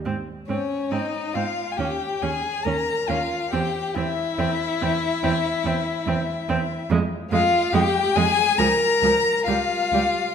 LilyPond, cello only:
\new Staff \with { instrumentName = "Cello" } { \clef bass \time 4/4 \key c \phrygian \tempo 4 = 70 aes,8 aes,8 aes,8 aes,8 ees,8 ees,8 ees,8 ees,8 | e,8 e,8 e,8 e,8 e,8 e,8 e,8 e,8 | f,8 f,8 f,8 f,8 des,8 des,8 des,8 des,8 | }